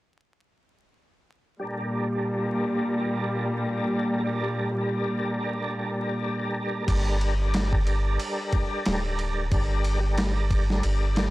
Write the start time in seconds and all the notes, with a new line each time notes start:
1.60 A#2 G3 D4 A4 A#4
2.09 G3 D4
2.15 A4 A#4
4.23 G3 D4 A4
4.27 A#4
4.72 G3 D4
4.78 A4 A#4
6.87 G1 G3 D4 A4, kick, crash, ride
6.91 A#4
7.21 ride
7.37 G3 D4
7.42 A4 A#4
7.54 snare, ride
7.73 kick
7.87 ride
8.19 ride
8.52 kick, ride
8.86 D1, snare, ride
9.19 ride
9.51 G1 G3 D4 A4, kick, ride
9.55 A#4
9.84 ride
10.00 G3 D4
10.06 A4 A#4
10.18 snare, ride
10.51 kick, ride
10.70 snare
10.83 G1, ride
11.16 snare, ride